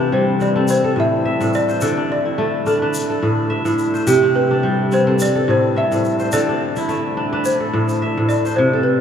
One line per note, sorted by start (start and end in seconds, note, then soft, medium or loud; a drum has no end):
0.00 0.73 C3 medium
0.00 0.29 A3 medium
0.00 0.40 C4 medium
0.00 1.67 D4 medium
0.00 0.84 E4 medium
0.00 0.66 F4 medium
0.00 0.97 G4 medium
0.00 0.17 A4 medium
0.00 0.14 B4 medium
0.12 0.73 G3 medium
0.12 0.41 C5 medium
0.40 0.55 C4 medium
0.40 0.67 D5 medium
0.40 shaker soft
0.56 2.36 C4 medium
0.56 0.84 A4 medium
0.68 0.96 C5 medium
0.68 shaker medium
0.84 1.81 A4 medium
0.96 1.39 A2 medium
0.96 1.51 E5 loud
1.25 2.29 E5 medium
1.41 1.86 A2 medium
1.41 shaker soft
1.53 2.11 D5 medium
1.53 shaker soft
1.69 2.88 C5 medium
1.69 shaker soft
1.81 2.99 D3 medium
1.81 3.10 A4 medium
1.81 shaker medium
1.97 2.66 D4 medium
2.12 2.69 D5 medium
2.25 3.82 E4 medium
2.38 4.38 A3 medium
2.66 2.82 D4 medium
2.66 3.75 A4 medium
2.66 shaker soft
2.82 4.50 D4 medium
2.82 4.00 B4 medium
2.94 shaker medium
3.10 4.42 A4 medium
3.22 3.64 A2 medium
3.50 4.53 E5 medium
3.65 4.12 A2 medium
3.65 shaker soft
3.78 shaker soft
3.94 5.13 C5 medium
3.94 shaker soft
4.07 5.25 C3 medium
4.07 5.48 G4 medium
4.07 4.36 G4 medium
4.07 shaker medium
4.22 4.91 C4 medium
4.35 4.93 B4 medium
4.51 6.19 D4 medium
4.63 5.25 G3 medium
4.92 5.07 C4 medium
4.92 5.19 C5 medium
4.92 shaker soft
5.07 6.87 C4 medium
5.07 5.35 A4 medium
5.19 5.50 D5 loud
5.19 shaker medium
5.35 6.32 A4 medium
5.48 5.90 A2 medium
5.48 5.78 C5 medium
5.76 6.80 E5 medium
5.76 6.29 E5 loud
5.92 6.37 A2 medium
5.92 shaker soft
6.04 shaker soft
6.20 7.39 C5 medium
6.20 shaker soft
6.32 7.50 D3 medium
6.32 7.60 A4 medium
6.32 7.49 D5 medium
6.32 shaker medium
6.49 7.17 D4 medium
6.76 8.33 E4 medium
6.76 shaker soft
6.89 8.88 A3 medium
6.89 shaker soft
7.17 7.32 D4 medium
7.33 9.00 D4 medium
7.33 8.51 B4 medium
7.45 8.26 C5 medium
7.45 shaker medium
7.60 8.73 A4 medium
7.73 8.16 A2 medium
7.89 shaker soft
8.02 9.01 E5 medium
8.17 8.63 A2 medium
8.29 8.58 D5 medium
8.29 shaker soft
8.45 9.01 C5 medium
8.45 shaker soft
8.56 9.01 C3 medium
8.56 8.86 C5 medium
8.73 9.01 A4 medium
8.83 9.01 B4 medium